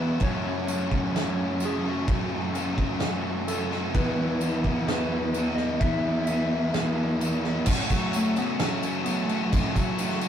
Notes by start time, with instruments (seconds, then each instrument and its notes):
Already playing: picked electric bass E2, overdriven electric guitar E3 F#3 B3 E4 F#4, clean electric guitar E4, soft synth lead B4
0.00 overdriven electric guitar F#3 B3 E4
0.20 picked electric bass F#2, overdriven electric guitar F#2 C#3 F#3 A3 C#4 F#4, clean electric guitar E3, soft synth lead C#5, kick, crash
0.43 overdriven electric guitar A3 C#4 F#4
0.66 overdriven electric guitar F#2 C#3 F#3 A3 C#4 F#4, tambourine, crash
0.90 overdriven electric guitar A3 C#4 F#4, kick
0.94 clean electric guitar E3, overdriven electric guitar F#3
1.13 picked electric bass F#2, overdriven electric guitar F#3 A3 C#4 F#4, soft synth lead C#5, snare, crash
1.39 clean electric guitar A3
1.60 overdriven electric guitar C#3 F#3 A3 C#4, clean electric guitar E3, tambourine, crash
1.64 overdriven electric guitar F#4, soft synth lead G#4
1.85 overdriven electric guitar F#3 A3 C#4 F#4
1.89 soft synth lead F#4
2.07 overdriven electric guitar F#2 C#3 F#3 A3, picked electric bass F#2, clean electric guitar E3, kick, crash
2.11 overdriven electric guitar C#4 F#4
2.32 overdriven electric guitar A3 C#4 F#4
2.54 overdriven electric guitar F#2 C#3 F#3 A3 C#4 F#4, tambourine, crash
2.77 clean electric guitar E3, overdriven electric guitar C#4 F#4, kick
2.81 overdriven electric guitar F#3 A3
3.00 picked electric bass F#2, overdriven electric guitar F#3 A3 C#4, snare, crash
3.05 overdriven electric guitar F#4
3.23 clean electric guitar A3
3.48 overdriven electric guitar C#3 F#3 A3 C#4 F#4, clean electric guitar E3, soft synth lead A4, tambourine, crash
3.71 overdriven electric guitar F#3 C#4 F#4, clean electric guitar A3, snare
3.75 overdriven electric guitar A3
3.95 picked electric bass E2, overdriven electric guitar E3 F#3 B3 E4 F#4, soft synth lead B4, kick, crash
4.19 overdriven electric guitar B3 E4 F#4
4.41 overdriven electric guitar E3 F#3 B3 E4, tambourine, crash
4.46 overdriven electric guitar F#4
4.64 clean electric guitar E3, overdriven electric guitar F#3 E4 F#4, kick
4.69 overdriven electric guitar B3
4.87 picked electric bass E2, overdriven electric guitar E3 B3 E4 F#4, soft synth lead B4, snare, crash
5.12 clean electric guitar B3
5.34 overdriven electric guitar E3 F#3 B3 E4 F#4, tambourine, crash
5.55 clean electric guitar B3, overdriven electric guitar F#4, soft synth lead D#5, snare
5.60 overdriven electric guitar F#3 B3 E4
5.80 picked electric bass E2, overdriven electric guitar E3 F#3 B3 E4 F#4, soft synth lead E5, kick, crash
6.05 overdriven electric guitar B3 E4 F#4
6.25 overdriven electric guitar E3 F#3 B3, soft synth lead E5, tambourine, crash
6.30 overdriven electric guitar E4 F#4
6.51 clean electric guitar E3, overdriven electric guitar F#3 B3 E4 F#4
6.74 picked electric bass E2, overdriven electric guitar E3 B3 E4 F#4, snare, crash
6.98 clean electric guitar B3
7.20 overdriven electric guitar E3 F#3 B3 E4 F#4, tambourine, crash
7.44 overdriven electric guitar F#3 B3 E4 F#4, snare
7.66 picked electric bass F#2, overdriven electric guitar F#2 C#3 F#3, clean electric guitar E3, kick, crash, tambourine
7.70 overdriven electric guitar A3 C#4 F#4
7.89 picked electric bass F#3, overdriven electric guitar A3 C#4 F#4, kick, tambourine, crash
7.94 overdriven electric guitar F#3
8.13 overdriven electric guitar C#3 F#3 A3 C#4 F#4, clean electric guitar E3, soft synth lead A3, tambourine, crash
8.36 overdriven electric guitar F#3 A3 C#4 F#4, soft synth lead B3, tambourine, crash
8.60 overdriven electric guitar F#2 C#3 F#3 A3 C#4 F#4, clean electric guitar E3, picked electric bass F#3, soft synth lead C#4, snare, tambourine, crash
8.82 overdriven electric guitar A3 C#4 F#4, tambourine, crash
8.87 overdriven electric guitar F#3
9.04 overdriven electric guitar C#3 F#3, clean electric guitar E3, soft synth lead B3, tambourine, crash
9.09 overdriven electric guitar A3 C#4 F#4
9.26 soft synth lead A3, overdriven electric guitar C#4 F#4, tambourine, crash
9.30 overdriven electric guitar F#3 A3
9.52 overdriven electric guitar F#2 C#3 F#3 A3 C#4 F#4, picked electric bass F#2, clean electric guitar E3, kick, tambourine, crash
9.74 picked electric bass F#3, overdriven electric guitar F#3 A3 C#4 F#4, kick, tambourine, crash
9.98 overdriven electric guitar C#3 F#3 A3 C#4 F#4, clean electric guitar E3, tambourine, crash
10.10 snare
10.21 overdriven electric guitar F#3 A3 C#4 F#4, tambourine, crash